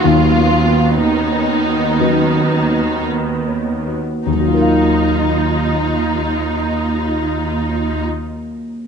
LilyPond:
<<
  \new Staff \with { instrumentName = "Harp" } { \time 4/4 \key ees \minor \tempo 4 = 52 << { \tuplet 3/2 { <dis ees' ees''>8 cis'8 fis'8 b''8 cis''8 fis'8 dis8 cis'8 fis'8 b''8 cis''8 fis'8~ } | fis'1 | } \\ { r1 | <ees ges ees' f' bes' f''>1 | } >> }
  \new Staff \with { instrumentName = "Violin section" } { \time 4/4 \key ees \minor f'4 dis'2 r4 | ees'1 | }
  \new Staff \with { instrumentName = "Viola section" } { \time 4/4 \key ees \minor << { b2.~ b8. r16 | ees'1 | } \\ { ges4 dis2~ dis8. r16 | f'1 | } >> }
  \new Staff \with { instrumentName = "Grand piano" } { \clef bass \time 4/4 \key ees \minor dis,4 dis4 <fis cis' b'>2 | <ees, ees ges f' bes' f''>1 | }
  \new Staff \with { instrumentName = "Cello section" } { \clef bass \time 4/4 \key ees \minor dis,2.~ dis,8. r16 | ees,1 | }
>>